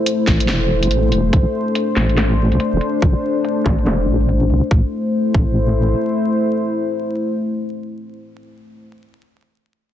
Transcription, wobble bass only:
0.28 A1
0.49 E1
0.83 G1
0.91 A1
1.12 E1
1.33 A1
1.97 A1
2.52 C2
2.73 E1
3.02 A1
3.66 A1
3.87 E1
4.08 A1
4.50 C2
4.71 A1
5.34 A1

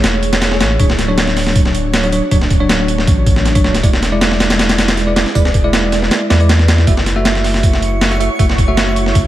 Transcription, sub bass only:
0.04 E1
0.61 A1
0.80 D1
2.32 D1
3.07 A1
3.65 D1
3.83 E1
5.35 E1
6.30 E2
6.87 F#1
8.39 F#1
9.15 C#2

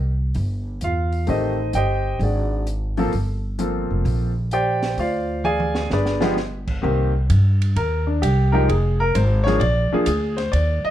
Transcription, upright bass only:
Already playing: C2
0.35 G1
0.82 E2
1.28 A1
1.74 G1
2.19 G#1
3.13 G1
3.90 F1
4.05 A#1
4.97 D2
5.91 G1
6.84 C2
7.30 G2
7.76 D#2
8.22 C2
8.69 F1
9.15 G#1
9.61 A#1
9.92 muted upright bass stroke
10.07 D2
10.53 D#2
10.85 muted upright bass stroke

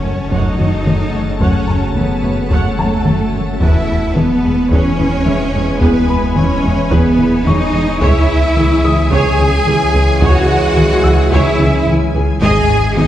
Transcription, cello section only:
Already playing: C#4
0.31 D#4
1.42 C#4
1.97 B3
2.52 A3
3.61 E4
4.16 B3
4.72 C#4
5.81 B3
6.37 C#4
6.92 B3
7.46 D#4
8.01 E4
9.12 G#4
10.22 F#4
11.32 E4
12.42 G#4
12.97 D#4

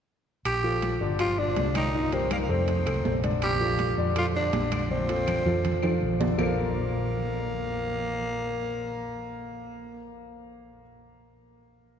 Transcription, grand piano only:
0.64 F3 F4 A4
1.01 D3 D4 D5
1.19 F3 F4 G4
1.38 D3 D4 D5
1.75 D#3 D#4 D#5
1.94 D#3 D#4 D#5
2.12 G3 G4 A#4
2.49 A3 A4 C5
2.86 A3 A4 C5
3.23 D3 D4 D5
3.61 F3 F4 A4
3.98 D3 D4 D5
4.16 F3 F4 A4
4.35 D3 D4 D5
4.72 D3 D4 D5
4.90 D3 D4 D5
5.09 F3 F4 A4
5.46 F3 F4 A4
5.83 F3 F4 A4
6.20 D3 D4 D5
6.38 A#3 F4 A4 A#4 C5 D5

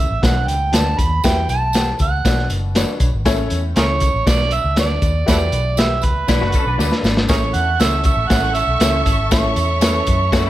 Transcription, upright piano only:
0.22 B2 D4 F#4 B4 D5
0.72 D4 F#4 B4 D5
1.24 E3 F#4 G4 B4 E5
1.74 G4 B4 F#5 G5
2.24 B2 D4 F#4 B4 D5
2.75 D4 F#4 B4 C#5
3.25 A2 C#4 E4 A4 C#5
3.76 C#4 E4 A4 E5
4.26 B2 D4 F#4 B4 D5
4.76 D4 F#4 B4 D5
5.26 E3 F#4 G4 B4 E5
5.77 F#4 G4 B4 E5
6.28 B2 D4 F#4 B4 D5
6.78 D4 F#4 B4 D5
7.29 A2 C#4 E4 A4 C#5
7.79 C#4 E4 A4 C#5
8.30 C#4 E4 A4 C#5
8.81 C#4 E4 A4 C#5
9.31 A2 C#4 E4 A4 E5
9.81 C#4 E4 A4 B4
10.32 C#4 E4 A4 C#5

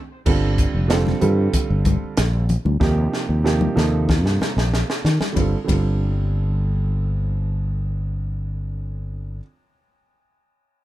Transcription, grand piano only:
0.26 D3 G3 C4 F4 A4
0.88 D3 G3 C4 F4 A4
1.21 D3 G3 C4 F4 A4
2.80 C3 F3 A#3 D#4 G4
3.44 C3 F3 A#3 D#4 G4
3.76 C3 F3 A#3 D#4 A4
5.32 D3 G3 C4
5.38 F4 A4
5.64 D3 G3 C4
5.70 F4 A4

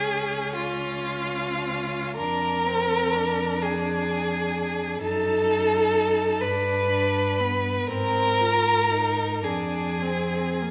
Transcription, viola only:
Already playing: C#4
2.17 D4
2.66 C4
3.16 D4
5.02 D#4
6.43 D4
6.90 D4
7.40 B3
7.89 C4
8.40 F4
8.91 D#4
9.44 D4
10.02 C4
10.62 A#3

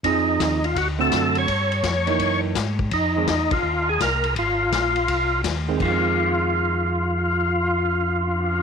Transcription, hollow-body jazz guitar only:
0.04 F3 C4 D#4 G#4
0.99 D3 A3 C4 F#4
2.07 E3 A#3 D#4
3.16 D#3 G#3 C4
5.68 D#3 G#3 C4
5.78 D#3
5.85 G#3
5.90 C4

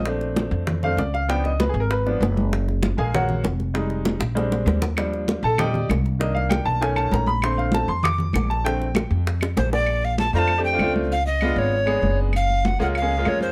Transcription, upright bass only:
Already playing: A#1
0.51 F2
0.97 C#2
1.74 G#1
2.20 F#1
2.98 A#1
3.44 F1
4.20 A#1
4.66 D#2
5.43 A#1
5.89 C2
6.65 B1
7.12 A#1
7.88 F2
8.34 A#1
9.11 F2
9.57 A#1
10.33 F2
10.79 C#2
11.56 G#1
12.02 F#1
12.80 C#2
13.26 F2

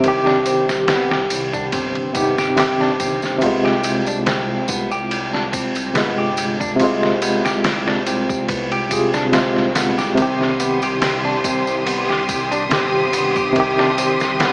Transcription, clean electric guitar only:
Already playing: G4
0.26 D4
0.46 C4
0.88 B3
1.11 G4
1.53 D4
1.73 C4
2.15 B3
2.38 G4
2.80 D4
3.00 C4
3.42 B3
3.65 G4
4.07 D4
4.26 C4
4.69 B3
4.91 G4
5.33 D4
5.53 C4
5.95 B3
6.18 G4
6.60 D4
6.80 C4
7.22 B3
7.45 G4
7.87 D4
8.07 C4
8.49 B3
8.72 G4
9.14 D4
9.33 C4
9.75 B3
9.98 G4
10.17 C4
10.60 B3
10.83 G4
11.25 D4
11.44 C4
11.86 B3
12.09 G4
12.51 D4
12.71 C4
13.13 B3
13.36 G4
13.78 D4
13.98 C4
14.40 B3

